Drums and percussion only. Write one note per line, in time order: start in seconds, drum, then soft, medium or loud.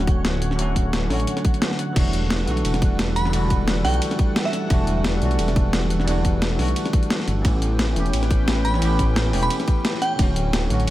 0.07 kick loud
0.07 closed hi-hat medium
0.25 snare loud
0.25 closed hi-hat medium
0.42 closed hi-hat medium
0.51 snare soft
0.59 closed hi-hat loud
0.76 kick medium
0.76 closed hi-hat medium
0.93 snare loud
0.93 closed hi-hat loud
1.10 snare soft
1.10 open hi-hat medium
1.20 closed hi-hat soft
1.27 closed hi-hat loud
1.37 snare soft
1.37 closed hi-hat soft
1.45 kick loud
1.45 closed hi-hat medium
1.54 closed hi-hat soft
1.62 snare loud
1.62 closed hi-hat loud
1.71 snare soft
1.79 snare soft
1.79 closed hi-hat medium
1.96 kick loud
1.96 closed hi-hat loud
1.96 crash medium
1.96 ride medium
2.13 closed hi-hat medium
2.30 snare loud
2.30 closed hi-hat loud
2.30 ride medium
2.48 closed hi-hat medium
2.57 closed hi-hat soft
2.65 closed hi-hat loud
2.65 ride medium
2.74 snare medium
2.74 closed hi-hat soft
2.82 kick loud
2.82 closed hi-hat medium
2.99 snare loud
2.99 closed hi-hat loud
2.99 ride medium
3.16 closed hi-hat medium
3.25 snare soft
3.33 closed hi-hat loud
3.33 ride medium
3.50 kick medium
3.50 closed hi-hat medium
3.68 snare loud
3.68 closed hi-hat medium
3.68 ride medium
3.85 snare soft
3.85 open hi-hat medium
3.94 closed hi-hat soft
4.02 closed hi-hat medium
4.02 ride medium
4.11 snare soft
4.11 closed hi-hat soft
4.19 kick loud
4.19 closed hi-hat medium
4.36 snare loud
4.36 closed hi-hat medium
4.36 ride medium
4.45 snare soft
4.53 snare soft
4.53 closed hi-hat medium
4.70 kick loud
4.70 closed hi-hat medium
4.70 ride medium
4.87 closed hi-hat medium
5.04 snare loud
5.04 closed hi-hat medium
5.04 ride medium
5.22 closed hi-hat medium
5.31 closed hi-hat soft
5.39 closed hi-hat medium
5.39 ride medium
5.48 snare soft
5.48 closed hi-hat soft
5.56 kick loud
5.56 closed hi-hat medium
5.73 snare loud
5.73 closed hi-hat medium
5.73 ride medium
5.90 closed hi-hat medium
6.00 snare soft
6.08 closed hi-hat medium
6.08 ride medium
6.25 kick medium
6.25 closed hi-hat medium
6.42 snare loud
6.42 closed hi-hat medium
6.42 ride medium
6.59 snare soft
6.59 open hi-hat medium
6.68 closed hi-hat soft
6.76 closed hi-hat medium
6.76 ride medium
6.85 snare soft
6.85 closed hi-hat soft
6.93 kick loud
6.93 closed hi-hat medium
7.03 closed hi-hat soft
7.10 snare loud
7.10 closed hi-hat medium
7.10 ride medium
7.20 snare soft
7.28 snare soft
7.28 closed hi-hat medium
7.45 kick loud
7.45 closed hi-hat medium
7.45 ride medium
7.62 closed hi-hat medium
7.79 snare loud
7.79 closed hi-hat medium
7.79 ride medium
7.96 closed hi-hat medium
8.06 closed hi-hat soft
8.13 closed hi-hat medium
8.13 ride medium
8.23 snare soft
8.23 closed hi-hat soft
8.31 kick loud
8.31 closed hi-hat medium
8.48 snare loud
8.48 closed hi-hat medium
8.48 ride medium
8.65 closed hi-hat medium
8.74 snare soft
8.82 closed hi-hat medium
8.82 ride medium
8.99 kick medium
8.99 closed hi-hat medium
9.16 snare loud
9.16 closed hi-hat medium
9.16 ride medium
9.33 snare soft
9.33 open hi-hat medium
9.43 closed hi-hat soft
9.50 closed hi-hat medium
9.50 ride medium
9.60 snare soft
9.60 closed hi-hat soft
9.68 kick loud
9.68 closed hi-hat medium
9.85 snare loud
9.85 closed hi-hat medium
9.85 ride medium
9.94 snare soft
10.02 snare soft
10.02 closed hi-hat medium
10.19 kick loud
10.19 closed hi-hat medium
10.19 ride medium
10.36 closed hi-hat medium
10.53 snare loud
10.53 closed hi-hat loud
10.53 ride medium
10.70 closed hi-hat medium
10.80 closed hi-hat soft